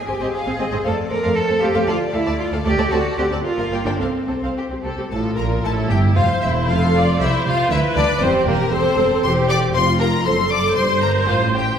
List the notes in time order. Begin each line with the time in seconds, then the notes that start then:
Already playing: G#5
0.08 G#1 C4 G4 G#4 C5
0.21 G#1 C4 G#4 C5 D#5
0.34 G#4 F5
0.46 G#1 C4 G#4 C5
0.59 G#1 C4 G#4 C5 D#5
0.72 G#1 C4 G#4 C5 D#5
0.84 F2 A3 A4 C5 D5 F5
1.10 F2 A3 A4 A#4 C5
1.23 F2 A3 A4 C5 F5
1.36 A4 C5
1.48 F2 A3 A4 C5
1.61 F2 A3 G4 A4 C5 F5
1.74 F2 A3 A4 C5 F5
1.87 D2 A3 F4 A4 D5 A5
2.13 D2 A3 E4 A4 F5
2.26 D2 A3 A4 D5 A5
2.39 F4
2.52 D2 A3 A4 F5
2.65 D2 A3 G4 A4 D5 A5
2.78 D2 A3 A4 D5 A5
2.91 D2 C4 F#4 A4 D5 A5
3.17 D2 C4 G4 A4 C5 F#5
3.30 D2 C4 A4 D5 A5
3.44 F4 A#4
3.58 G1 A#3 A#4 F5
3.71 G1 A#3 A#4 D5 G5
3.85 G1 A#3 D4 A#4 D5 G5
3.99 C2 C4 A4 C5 F5
4.28 C2 C4 A4 C5
4.42 C2 C4 A4 C5 F5
4.57 G4
4.70 C2 C4 G4
4.84 C2 C4 G4 A4
4.98 C2 C4 G4
5.11 A1 A2 F4 A4 A5
5.37 A#1 A#2 A#4 A#5
5.64 A1 A2 E4 A4 A5
5.90 G1 G2 G4 G5
6.16 F1 F2 F4 C5 F5
6.41 E1 E2 E4 E5
6.68 F1 F2 F4 A4 F5
6.95 D5
7.19 C2 C3 E4 C5 E5
7.45 C2 C3 F4 F5
7.70 D2 D3 E4 B4 E5
7.96 D2 D3 D4 D5
8.21 E1 E2 C4 G4 C5
8.46 E1 E2 A#3 A#4
8.72 E1 E2 C4 A4 C5
8.98 E1 E2
9.23 E1 E2 G4 C5 C6
9.49 D5 D6
9.73 F1 F2 F4 C5 C6
9.99 A#4 A#5
10.24 F#1 F#2 A4 C5 C6
10.51 D5 D6
10.76 G1 G2 C5 C6
11.02 A#4 A#5
11.28 A1 A2 F4 F5
11.54 G4 G5